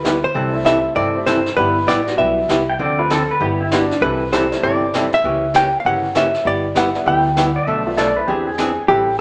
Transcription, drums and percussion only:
0.05 snare medium
0.05 hi-hat pedal soft
0.35 brush sweep medium
0.66 snare medium
0.66 hi-hat pedal medium
0.96 brush sweep soft
1.26 snare medium
1.26 hi-hat pedal soft
1.46 snare soft
1.58 brush sweep medium
1.88 snare medium
1.88 hi-hat pedal medium
2.07 snare soft
2.19 brush sweep soft
2.49 snare medium
2.49 hi-hat pedal medium
2.79 brush sweep soft
3.10 snare medium
3.10 hi-hat pedal soft
3.41 brush sweep soft
3.71 snare medium
3.71 hi-hat pedal medium
3.91 snare soft
4.02 brush sweep medium
4.33 snare medium
4.33 hi-hat pedal medium
4.52 snare soft
4.63 brush sweep soft
4.94 snare medium
4.94 hi-hat pedal medium
5.13 snare soft
5.24 brush sweep soft
5.54 snare medium
5.54 hi-hat pedal medium
5.85 brush sweep soft
6.15 snare medium
6.15 hi-hat pedal medium
6.34 snare soft
6.45 brush sweep medium
6.75 snare medium
6.75 hi-hat pedal medium
6.95 snare soft
7.06 brush sweep medium
7.37 snare medium
7.37 hi-hat pedal medium
7.67 brush sweep medium
7.97 snare medium
7.97 hi-hat pedal soft
8.28 brush sweep soft
8.58 snare medium
8.58 hi-hat pedal medium
8.88 brush sweep soft

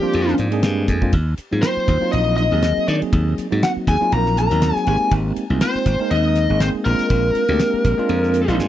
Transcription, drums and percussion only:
0.13 ride medium
0.28 snare soft
0.38 hi-hat pedal medium
0.38 ride medium
0.52 ride medium
0.63 snare loud
0.63 ride medium
0.88 kick medium
0.88 hi-hat pedal medium
0.88 ride medium
1.02 kick medium
1.12 kick medium
1.12 ride medium
1.37 hi-hat pedal medium
1.37 ride medium
1.62 snare loud
1.62 ride medium
1.88 kick medium
1.88 hi-hat pedal medium
1.88 ride medium
2.13 ride medium
2.38 hi-hat pedal medium
2.38 ride medium
2.62 snare medium
2.62 ride medium
2.88 hi-hat pedal medium
2.88 ride medium
3.02 ride medium
3.13 kick medium
3.13 ride medium
3.38 hi-hat pedal medium
3.38 ride soft
3.52 ride medium
3.63 snare loud
3.63 ride medium
3.87 kick medium
3.87 hi-hat pedal medium
3.87 ride medium
4.12 ride medium
4.26 snare soft
4.37 snare soft
4.37 hi-hat pedal medium
4.37 ride soft
4.51 snare soft
4.51 ride medium
4.62 snare medium
4.62 ride medium
4.76 snare soft
4.87 hi-hat pedal medium
4.87 ride medium
5.11 kick medium
5.11 ride medium
5.36 hi-hat pedal medium
5.36 ride medium
5.61 snare loud
5.61 ride medium
5.75 snare soft
5.86 kick medium
5.86 hi-hat pedal medium
5.86 ride medium
6.11 ride medium
6.35 snare soft
6.35 hi-hat pedal medium
6.35 ride medium
6.60 snare loud
6.60 ride medium
6.85 hi-hat pedal medium
6.85 ride medium
6.99 snare soft
6.99 ride medium
7.10 kick medium
7.10 ride medium
7.35 hi-hat pedal medium
7.35 ride medium
7.48 ride medium
7.59 snare loud
7.59 ride medium
7.84 kick medium
7.84 hi-hat pedal medium
7.84 ride medium
8.09 ride medium
8.23 snare soft
8.34 hi-hat pedal medium
8.34 ride medium
8.48 snare soft
8.48 ride medium
8.59 snare soft

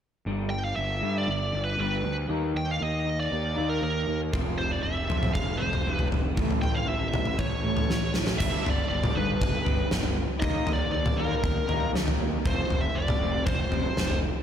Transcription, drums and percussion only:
4.34 kick medium
4.34 floor tom medium
5.10 floor tom medium
5.23 floor tom medium
5.23 mid tom medium
5.35 kick medium
5.35 floor tom medium
5.73 floor tom medium
5.99 floor tom medium
6.12 floor tom medium
6.37 kick medium
6.37 floor tom medium
6.51 floor tom medium
6.63 floor tom medium
7.14 floor tom medium
7.14 mid tom medium
7.25 floor tom medium
7.39 kick medium
7.39 floor tom medium
7.77 floor tom medium
7.90 snare medium
8.14 snare medium
8.27 snare medium
8.40 kick loud
8.40 floor tom medium
8.40 crash medium
8.66 floor tom medium
9.04 floor tom medium
9.04 mid tom medium
9.41 kick loud
9.41 floor tom medium
9.66 floor tom medium
9.91 snare medium
10.03 floor tom medium
10.42 kick medium
10.42 floor tom medium
10.67 floor tom medium
11.06 floor tom medium
11.06 mid tom medium
11.44 kick medium
11.44 floor tom medium
11.69 floor tom medium
11.96 snare medium
12.08 floor tom medium
12.45 kick medium
12.45 floor tom medium
12.70 floor tom medium
13.08 floor tom medium
13.08 mid tom medium
13.46 kick loud
13.46 floor tom medium
13.72 floor tom medium
13.97 snare medium
14.10 floor tom medium

